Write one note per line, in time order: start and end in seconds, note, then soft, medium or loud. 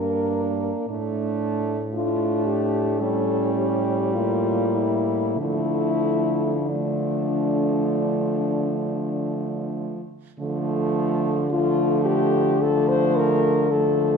0.00 0.71 G2 medium
0.00 0.85 A#3 medium
0.00 0.85 D4 medium
0.00 0.87 A#4 medium
0.88 5.39 A2 medium
0.88 1.91 A3 medium
0.88 1.91 D4 medium
1.93 3.02 A3 medium
1.93 3.03 D4 medium
1.93 2.47 F4 medium
2.46 3.01 G4 loud
2.99 5.37 G3 medium
2.99 4.17 C#4 medium
2.99 3.54 A4 medium
3.54 4.15 G4 medium
4.14 5.40 A#3 medium
4.14 4.76 F4 medium
4.75 5.39 E4 medium
5.37 10.04 D3 medium
5.37 6.66 F3 medium
5.37 6.54 A3 medium
5.37 6.72 E4 loud
6.69 10.01 F3 medium
6.69 10.02 A3 medium
6.69 9.80 D4 medium
10.39 14.17 D3 medium
10.39 11.46 F3 medium
10.39 11.46 A3 medium
11.50 12.59 F3 medium
11.50 12.60 A3 medium
11.50 12.01 F4 loud
12.05 12.63 G4 loud
12.61 13.68 F3 medium
12.61 13.69 A3 medium
12.61 12.90 A4 loud
12.88 13.17 C5 loud
13.16 13.72 A#4 loud
13.71 14.17 F3 medium
13.71 14.17 A3 medium
13.71 14.17 A4 loud